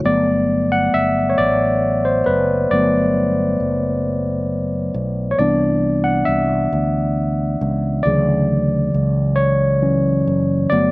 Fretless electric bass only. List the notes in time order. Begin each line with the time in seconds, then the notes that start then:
0.05 G1
0.94 G1
1.39 A1
2.27 F#1
2.71 G1
3.60 F#1
4.94 B1
5.39 C2
6.28 C2
6.73 D2
7.61 C#2
8.06 D2
8.94 C#2
10.27 F#1
10.72 G1